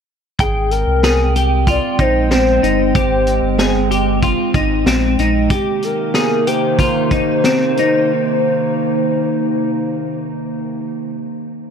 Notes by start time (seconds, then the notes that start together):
0.38 G#1 G#3 C4 G#4 G5, kick, closed hi-hat
0.70 A#4, closed hi-hat
0.87 C2
1.03 G#4, snare, closed hi-hat
1.36 G4, closed hi-hat
1.67 F4 D5, kick, closed hi-hat
1.99 A#1 D#4 C5, kick, closed hi-hat
2.31 C4, snare, closed hi-hat
2.63 G1 D#4, closed hi-hat
2.95 G#1 G4 C5, kick, closed hi-hat
3.27 closed hi-hat
3.43 G1
3.59 G#4, snare, closed hi-hat
3.91 G4, closed hi-hat
4.22 F4, kick, closed hi-hat
4.54 G#1 D#4, kick, closed hi-hat
4.86 A#1 C4, snare, closed hi-hat
5.19 A#1 D#4, closed hi-hat
5.50 C3 D#3 A#3 D#4 G4, kick, closed hi-hat
5.82 A#4, closed hi-hat
6.14 G#4, snare, closed hi-hat
6.47 G4 C5, closed hi-hat
6.79 F4 C5, kick, closed hi-hat
7.11 D#4, kick, closed hi-hat
7.44 C4, snare, closed hi-hat
7.77 D#4, closed hi-hat